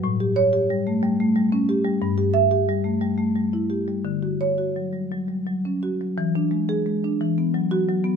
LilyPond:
<<
  \new Staff \with { instrumentName = "Marimba" } { \time 6/8 \key e \dorian \tempo 4. = 59 r8 cis''8 r2 | r8 e''8 r2 | r8 cis''8 r2 | r8. gis'8 r4 fis'8 r16 | }
  \new Staff \with { instrumentName = "Marimba" } { \clef bass \time 6/8 \key e \dorian a,16 g'8 g'16 g16 a16 g16 a16 g16 cis'16 g'16 g16 | g,16 g'8 g'16 g16 a16 g16 a16 g16 e'16 g'16 g16 | d16 fis'8 fis'16 fis16 g16 fis16 g16 fis16 cis'16 fis'16 fis16 | e16 d'16 gis8 gis16 d'16 e16 b16 fis8 fis16 b16 | }
>>